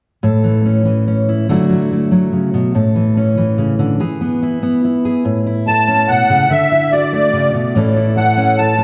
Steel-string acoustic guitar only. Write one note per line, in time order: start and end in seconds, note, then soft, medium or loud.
0.23 1.46 A2 medium
0.23 1.52 A4 medium
0.44 0.85 E3 soft
0.66 1.06 C#4 soft
0.86 1.49 E3 soft
1.08 1.47 C#4 soft
1.29 1.51 E4 soft
1.49 2.32 D3 medium
1.49 1.68 F#3 soft
1.49 1.92 A3 soft
1.49 3.82 E4 soft
1.49 2.75 F#4 medium
1.69 2.10 F#3 soft
1.92 3.17 A3 soft
2.11 2.72 F#3 soft
2.32 2.53 C#3 soft
2.54 2.75 B2 medium
2.75 3.98 A2 medium
2.75 3.98 A4 medium
2.96 3.37 E3 soft
3.17 3.98 C#4 soft
3.37 4.00 E3 soft
3.58 3.79 C#3 soft
3.79 4.00 D3 soft
4.00 6.50 E3 medium
4.00 5.04 G#4 medium
4.21 4.61 B3 soft
4.43 4.83 E4 soft
4.63 5.23 B3 soft
4.85 5.23 E4 soft
5.05 5.23 G#4 medium
5.25 6.48 A2 medium
5.46 6.53 E4 soft
5.68 6.92 A4 soft
5.88 6.48 C#4 soft
6.08 6.29 B2 soft
6.30 6.50 C#3 soft
6.50 7.33 D3 medium
6.72 7.77 E4 soft
6.92 7.76 F#4 soft
7.13 7.75 A3 soft
7.33 7.53 C#3 soft
7.54 7.75 B2 soft
7.75 8.84 A2 medium
7.75 8.84 E3 soft
7.75 8.36 C#4 soft
7.75 7.96 E4 soft
7.75 8.16 A4 medium
7.96 8.78 E4 soft
8.17 8.57 A4 soft
8.37 8.77 C#4 soft
8.58 8.84 A4 soft
8.78 8.84 C#4 soft